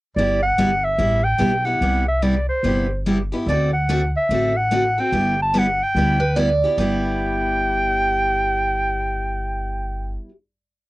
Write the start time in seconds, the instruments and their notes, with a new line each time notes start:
0.16 upright bass G1, steel-string acoustic guitar G3 B3 E4 G4, clarinet D5
0.43 clarinet F#5
0.58 upright bass G1, steel-string acoustic guitar G3 B3 E4 G4
0.84 clarinet E5
0.98 upright bass A1, steel-string acoustic guitar G3 B3 E4 G4
1.24 clarinet G5
1.38 upright bass B1, steel-string acoustic guitar G3 B3 E4 G4
1.65 steel-string acoustic guitar B3 E4 G4, clarinet F#5
1.81 upright bass C2, steel-string acoustic guitar C3 G3 B3 E4 G4
2.08 clarinet E5
2.22 steel-string acoustic guitar C3 G3 B3 E4 G4, clarinet D5
2.49 clarinet C5
2.63 upright bass G1, steel-string acoustic guitar C3 G3 B3 E4 G4
3.06 steel-string acoustic guitar C3 G3 B3 E4 G4
3.32 steel-string acoustic guitar B3 E4 G4
3.46 upright bass D2, steel-string acoustic guitar D3 A3 C4 F#4 A4, clarinet D5
3.73 clarinet F#5
3.89 steel-string acoustic guitar D3 A3 C4 F#4 A4
4.17 clarinet E5
4.29 upright bass A1, steel-string acoustic guitar D3 A3 C4 F#4 A4
4.57 clarinet F#5
4.71 steel-string acoustic guitar D3 A3 C4 F#4 A4
4.98 steel-string acoustic guitar C4 F#4 A4, clarinet G5
5.12 upright bass G1, steel-string acoustic guitar G3 B3 E4 G4
5.42 clarinet A5
5.54 steel-string acoustic guitar G3 B3 E4 G4
5.59 clarinet F#5
5.83 clarinet G5
5.95 upright bass D2, steel-string acoustic guitar G3 B3 E4 G4
6.20 steel-string acoustic guitar B4
6.36 steel-string acoustic guitar G3 B3 E4 G4 D5
6.64 steel-string acoustic guitar B3 E4 G4
6.77 upright bass G1, steel-string acoustic guitar G3 B3 E4 G4 D5, clarinet G5